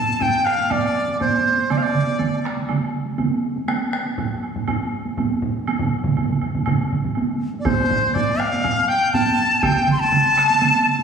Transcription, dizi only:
0.00 0.23 A5 medium
0.22 0.46 G5 medium
0.45 0.73 F5 medium
0.71 1.20 D5 medium
1.21 1.73 C5 medium
1.71 1.79 D5 medium
1.78 1.85 F5 medium
1.83 2.45 D5 medium
7.60 7.67 D5 medium
7.66 8.16 C5 medium
8.14 8.41 D5 medium
8.39 8.90 F5 medium
8.89 9.12 G5 medium
9.13 9.56 A5 medium
9.56 9.64 A5 medium
9.62 9.91 G5 medium
9.92 10.01 C6 medium
10.00 11.03 A5 loud

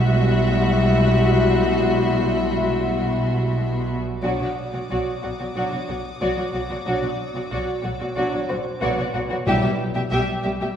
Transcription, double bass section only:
0.00 3.99 B1 medium
4.24 4.30 B1 soft
4.91 4.97 B1 soft
5.24 5.30 B1 soft
5.56 5.63 B1 soft
5.89 5.95 B1 soft
6.21 6.28 B1 soft
6.54 6.61 B1 soft
6.87 6.93 B1 soft
7.51 7.58 B1 medium
7.84 7.91 B1 soft
8.16 8.23 B1 medium
8.49 8.56 B1 soft
8.82 8.88 B1 medium
9.14 9.21 B1 soft
9.47 9.53 B1 medium
10.11 10.18 B1 medium
10.44 10.51 B1 soft

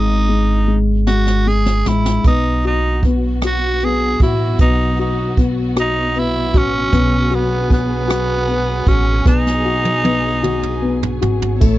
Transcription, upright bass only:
0.00 1.82 G#1 medium
1.85 2.22 A1 medium
2.24 4.16 B1 medium
4.20 4.57 A1 medium
4.59 6.55 B1 medium
6.55 6.91 A1 medium
6.93 8.83 B1 loud
8.87 9.23 A1 medium
9.26 11.18 B1 loud
11.22 11.59 G#1 medium
11.62 11.78 A1 loud

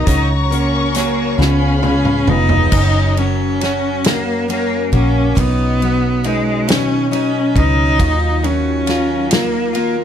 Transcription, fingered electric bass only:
0.07 1.35 C#2 loud
1.39 2.24 C#2 medium
2.28 2.70 F1 medium
2.72 4.89 F#1 loud
4.92 5.34 A#1 medium
5.37 7.52 B1 loud
7.55 7.97 C#2 medium
7.99 10.04 D#2 loud

